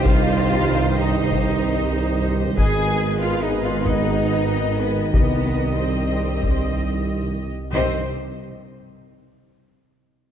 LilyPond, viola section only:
\new Staff \with { instrumentName = "Viola section" } { \time 4/4 \key c \minor \tempo 4 = 93 <g' c''>1 | <aes' ces''>1 | <g' ees''>2.~ <g' ees''>8 r8 | <g' c''>8 r2. r8 | }